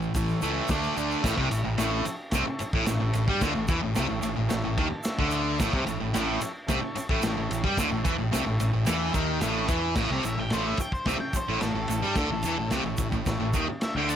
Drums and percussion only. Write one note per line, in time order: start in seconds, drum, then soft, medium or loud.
0.02 shaker soft
0.14 kick loud
0.14 open hi-hat medium
0.14 shaker loud
0.29 shaker soft
0.42 shaker medium
0.68 kick loud
0.68 snare loud
0.68 open hi-hat medium
0.68 shaker medium
0.84 shaker soft
0.97 shaker medium
1.11 shaker soft
1.24 kick loud
1.24 snare loud
1.24 crash loud
1.24 shaker loud
1.38 kick medium
1.51 ride medium
1.51 shaker medium
1.78 snare loud
1.78 ride loud
1.78 shaker loud
2.05 ride medium
2.05 shaker medium
2.31 kick loud
2.31 snare loud
2.31 ride medium
2.31 shaker loud
2.59 ride medium
2.59 shaker medium
2.73 kick loud
2.86 snare loud
2.86 ride loud
2.86 shaker medium
3.13 ride medium
3.13 shaker medium
3.28 kick loud
3.41 kick loud
3.41 snare loud
3.41 ride loud
3.41 shaker medium
3.68 kick loud
3.68 ride medium
3.68 shaker medium
3.95 snare loud
3.95 ride loud
3.95 shaker medium
4.22 ride medium
4.22 shaker medium
4.50 snare loud
4.50 ride loud
4.50 shaker medium
4.78 kick loud
4.78 ride medium
5.04 snare loud
5.04 ride loud
5.04 shaker medium
5.19 kick loud
5.31 ride medium
5.31 shaker medium
5.60 kick loud
5.60 snare loud
5.60 crash loud
5.60 shaker medium
5.73 kick loud
5.87 ride medium
5.87 shaker medium
6.14 snare loud
6.14 ride loud
6.14 shaker medium
6.41 ride medium
6.41 shaker medium
6.68 kick loud
6.68 snare loud
6.68 ride loud
6.68 shaker medium
6.96 ride medium
6.96 shaker medium
7.09 kick loud
7.22 snare loud
7.22 ride loud
7.22 shaker loud
7.51 ride medium
7.51 shaker medium
7.64 kick loud
7.77 kick loud
7.77 snare loud
7.77 ride loud
7.77 shaker loud
8.05 kick loud
8.05 ride medium
8.05 shaker medium
8.33 snare loud
8.33 ride loud
8.33 shaker loud
8.60 ride medium
8.60 shaker medium
8.86 snare loud
8.86 ride loud
8.86 shaker loud
9.14 kick loud
9.14 ride medium
9.14 shaker medium
9.41 snare loud
9.41 ride loud
9.41 shaker medium
9.68 kick loud
9.68 ride medium
9.68 shaker medium
9.95 kick loud
9.95 snare loud
9.95 crash loud
9.95 shaker medium
10.23 ride medium
10.23 shaker medium
10.50 snare loud
10.50 ride loud
10.50 shaker medium
10.77 kick medium
10.77 ride medium
10.77 shaker medium
10.92 kick medium
10.92 shaker soft
11.06 kick loud
11.06 snare loud
11.06 ride loud
11.06 shaker medium
11.33 kick medium
11.33 ride medium
11.33 shaker medium
11.61 snare loud
11.61 ride loud
11.61 shaker medium
11.88 ride medium
11.88 shaker medium
12.04 shaker soft
12.15 kick loud
12.15 snare loud
12.15 ride loud
12.15 shaker medium
12.43 ride medium
12.43 shaker medium
12.70 snare loud
12.70 ride medium
12.70 shaker medium
12.97 kick medium
12.97 ride medium
12.97 shaker medium
13.12 kick medium
13.12 shaker soft
13.26 kick loud
13.26 snare loud
13.26 ride loud
13.26 shaker medium
13.53 kick medium
13.53 ride medium
13.53 shaker medium
13.81 snare loud
13.81 ride loud
13.81 shaker medium
14.09 ride medium
14.09 shaker medium